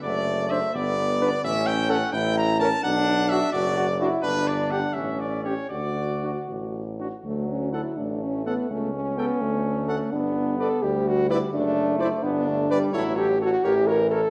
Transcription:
X:1
M:6/8
L:1/16
Q:3/8=85
K:D
V:1 name="Trumpet"
d4 e2 d6 | e2 g2 f2 g2 _b2 a2 | f4 e2 d4 z2 | B2 d2 f2 e2 d2 c2 |
d6 z6 | z4 f z4 z f z | z4 g z4 z f z | z4 d z4 z d z |
z4 d z4 z d z | c2 c2 c2 c2 c2 c2 |]
V:2 name="Flugelhorn"
z4 =c z4 z B z | z4 A z4 z _B z | z4 F z4 z F z | z4 G z4 z G z |
z4 F z4 z F z | z4 A z4 z A z | z4 A z4 z A z | z4 B z4 z B z |
z4 =c z4 z B z | A2 A2 A2 _B2 B2 B2 |]
V:3 name="French horn"
z4 D z4 z D z | z4 C z4 z C z | z4 D z4 z D z | z4 D z4 z C z |
z4 D z4 z D z | A,2 C2 E2 D2 C2 B,2 | A,2 C2 B,2 A,6 | D4 A2 G2 F2 E2 |
D4 E2 D6 | E2 G2 F2 G2 _B2 A2 |]
V:4 name="Trombone"
A,6 B,6 | C6 E4 z2 | D6 F2 F2 E2 | D6 C6 |
F8- F z3 | F,6 A,6 | C12 | B,6 G,6 |
A,6 B,2 A,2 G,2 | F,4 z2 E,6 |]
V:5 name="Tuba" clef=bass
F,,,6 G,,,6 | A,,,6 A,,,6 | B,,,6 F,,,6 | G,,,6 A,,,6 |
D,,6 A,,,6 | D,,6 A,,,6 | C,,6 D,,6 | G,,,6 D,,6 |
F,,,6 G,,,6 | A,,,6 A,,,6 |]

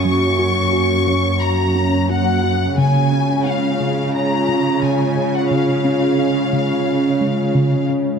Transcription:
X:1
M:4/4
L:1/16
Q:1/4=88
K:Db
V:1 name="Violin section"
d'8 b4 g4 | a4 f4 b4 a3 g | f12- f2 z2 |]
V:2 name="Analog synth pad"
[B,DGd]16 | [A,DFd]16- | [A,DFd]16 |]
V:3 name="Synth arpeggio sound" clef=bass
G,2 G2 G2 G,2 z2 D2 G,2 G2 | D,2 D2 D2 D,2 z2 A,2 D,2 D2 | D,2 D2 D2 D,2 z2 A,2 D,2 D2 |]
V:4 name="Cello section" clef=bass
G,,16 | D,16- | D,12- D,2 z2 |]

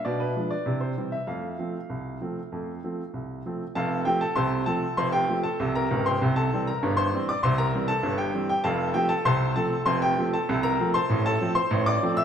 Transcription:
X:1
M:2/4
L:1/16
Q:1/4=98
K:F
V:1 name="Grand piano"
d =B2 d2 c2 e | f8- | f6 z2 | [Afa]2 [Gg] [Aa] [cac']2 [Aa]2 |
[cc'] [Gg]2 [Aa]2 [Bb]2 [cgc']- | [cgc'] [Aa]2 [Bb]2 [cc']2 [dd'] | [cc'] [Bb]2 [Aa]2 [Gg]2 [Gg] | [Afa]2 [Gg] [Aa] [cac']2 [Aa]2 |
[cc'] [Gg]2 [Aa]2 [Bb]2 [cac']- | [cac'] [Aa]2 [cc']2 [dd']2 [ee'] |]
V:2 name="Grand piano" clef=bass
[=B,,D]2 [F,^G,D]2 [C,E]2 [E,=G,C]2 | [F,,A,]2 [F,A,C]2 C,,2 [F,A,C]2 | [F,,A,]2 [F,A,C]2 C,,2 [F,A,C]2 | [F,,,F,,]2 [F,A,C]2 [C,,C,]2 [F,A,C]2 |
[F,,,F,,]2 [F,A,C]2 [C,,C,]2 [_D,,,_D,,]2 | [C,,C,]2 [E,G,C]2 [G,,,G,,]2 [E,G,C]2 | [C,,C,]2 [E,G,C]2 [G,,,G,,]2 [E,G,C]2 | [F,,,F,,]2 [F,A,C]2 [C,,C,]2 [F,A,C]2 |
[F,,,F,,]2 [F,A,C]2 [C,,C,]2 [F,A,C]2 | [A,,,A,,]2 [F,A,C]2 [A,,,A,,]2 [F,A,C]2 |]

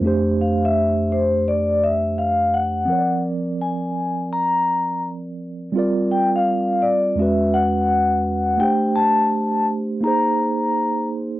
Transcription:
X:1
M:4/4
L:1/16
Q:"Swing 16ths" 1/4=84
K:Fmix
V:1 name="Vibraphone"
z2 f =e3 c2 d2 e2 f2 ^f2- | ^f2 z2 _a4 b4 z4 | z2 g f3 d2 =e2 ^f6 | g2 a4 z2 b6 z2 |]
V:2 name="Tine electric piano"
[F,,A,DGc]16 | [F,CB^cd]16 | [G,CFBd]8 [=E,,^G,^C^F=B]8 | [A,DGc]8 [B,E_Ac]8 |]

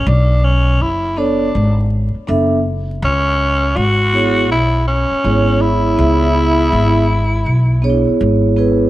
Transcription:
X:1
M:4/4
L:1/16
Q:"Swing 16ths" 1/4=81
K:C#phr
V:1 name="Vibraphone"
z6 [B,DAc]2 z4 [B,DAe]2 z2 | z6 [B,EGc]2 z4 [B,EGc]4 | [B,EGe]6 z4 [B,DEGc]4 [B,EGB]2 |]
V:2 name="Tenor saxophone"
D2 C2 E2 D4 z6 | C4 F4 E2 C4 E2- | E12 z4 |]
V:3 name="Upright bass" clef=bass
B,,,4 F,,,4 G,,,3 z F,,,4 | C,,4 G,,,4 B,,,3 z G,,,4 | C,,4 G,,,4 B,,,3 z G,,,4 |]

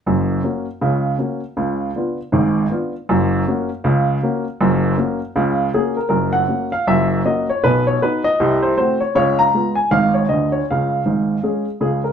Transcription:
X:1
M:4/4
L:1/8
Q:"Swing" 1/4=158
K:F#
V:1 name="Upright piano"
z8 | z8 | z8 | z6 G A |
A f2 e =e2 d c | B c B d2 =c c ^c | c a2 g e c d c | e6 G A |]
V:2 name="Upright piano"
[F,,,F,,]2 [A,CF]2 [C,,C,]2 [A,CF]2 | [C,,C,]2 [B,=DE]2 [G,,,G,,]2 [B,DE]2 | [F,,,F,,]2 [A,CF]2 [C,,C,]2 [A,CF]2 | [F,,,F,,]2 [A,CF]2 [C,,C,]2 [A,CF]2 |
[F,,,F,,]2 [A,CF]2 [F,,,F,,]2 [A,CF]2 | [B,,,B,,]2 [B,DF]2 [=C,,=C,]2 [=A,=C_G]2 | [C,,C,]2 [G,B,E]2 [G,,,G,,]2 [=D,,=D,]2 | [C,,C,]2 [G,,,G,,]2 [G,CG]2 [C,,C,]2 |]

